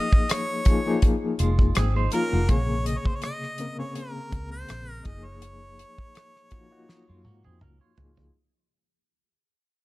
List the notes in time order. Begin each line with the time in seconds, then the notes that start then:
Already playing: F3 A#3 D#4 G#4 D#5
0.13 muted fingered electric bass stroke, kick
0.29 C#5, cross-stick, closed hi-hat
0.65 F3 A#3 D#4 G#4, kick, closed hi-hat
0.86 F3 A#3 D#4 G#4
1.02 kick, closed hi-hat
1.39 F1 G#3 F4, closed hi-hat
1.59 kick
1.75 G#1 C4 G#4, cross-stick, closed hi-hat
1.96 D#4 C5
2.12 F3 A#3 C#4 D#4 F4 A#4, closed hi-hat
2.33 F1 A#3 F#4
2.49 A#1 C3 A#3 G#4 C#5, kick, closed hi-hat
2.56 C#3
2.86 D#5, closed hi-hat
2.98 C#5
3.05 C5, muted fingered electric bass stroke, kick
3.16 C#5
3.22 D#5, cross-stick, closed hi-hat
3.43 cross-stick
3.58 C#3 A#3 C4 A#4, closed hi-hat
3.78 C#3 A#3 C4 G#4 C#5
3.95 A#4, closed hi-hat
4.32 C#2, kick, closed hi-hat
4.52 C5
4.68 A#1, cross-stick, closed hi-hat
4.91 A#4
5.05 F#1 F3 A#3 D#4 G#4 D#5, kick, closed hi-hat
5.25 C#5
5.42 closed hi-hat
5.79 closed hi-hat
5.98 muted fingered electric bass stroke, kick
6.15 cross-stick, closed hi-hat
6.36 cross-stick
6.51 F3 A#3 D#4 F#4, kick, closed hi-hat
6.70 A#3 D#4 F4 F#4
6.88 F#3 D#4, snare
7.08 F#2 G#3 F4
7.25 G#2 A#3 F#4, high tom
7.44 F2 C4 G#4, high tom
7.61 C#2 C#4 A#4, mid tom
7.81 F4 C#5
7.97 C#2 F3 A#3 D#4 G#4, floor tom
8.17 floor tom